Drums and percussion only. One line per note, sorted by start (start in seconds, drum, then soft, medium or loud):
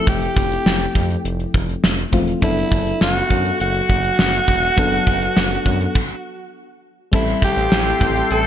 0.07 kick loud
0.07 closed hi-hat medium
0.22 closed hi-hat medium
0.37 kick medium
0.37 closed hi-hat medium
0.52 closed hi-hat soft
0.66 snare loud
0.81 closed hi-hat soft
0.95 kick medium
0.95 closed hi-hat medium
1.10 closed hi-hat soft
1.25 closed hi-hat medium
1.40 closed hi-hat soft
1.54 kick medium
1.54 closed hi-hat medium
1.69 closed hi-hat soft
1.84 snare loud
1.98 closed hi-hat medium
2.13 kick medium
2.13 closed hi-hat medium
2.28 closed hi-hat soft
2.42 kick loud
2.42 closed hi-hat medium
2.57 closed hi-hat medium
2.72 kick medium
2.72 closed hi-hat medium
2.87 closed hi-hat soft
3.01 snare loud
3.16 closed hi-hat soft
3.30 kick medium
3.30 closed hi-hat medium
3.45 closed hi-hat soft
3.60 closed hi-hat medium
3.75 closed hi-hat soft
3.90 kick medium
3.90 closed hi-hat medium
4.04 closed hi-hat soft
4.19 snare loud
4.34 closed hi-hat medium
4.48 kick medium
4.48 closed hi-hat medium
4.63 closed hi-hat soft
4.78 kick loud
4.78 closed hi-hat medium
4.93 closed hi-hat medium
5.07 kick loud
5.07 closed hi-hat medium
5.22 closed hi-hat soft
5.37 snare loud
5.51 closed hi-hat soft
5.66 kick medium
5.66 closed hi-hat medium
5.81 closed hi-hat soft
5.95 kick loud
5.95 crash medium
7.13 kick loud
7.13 crash medium
7.28 closed hi-hat medium
7.42 kick medium
7.42 closed hi-hat medium
7.57 closed hi-hat medium
7.72 snare loud
7.86 closed hi-hat medium
8.01 kick medium
8.01 closed hi-hat medium
8.16 closed hi-hat soft
8.31 closed hi-hat medium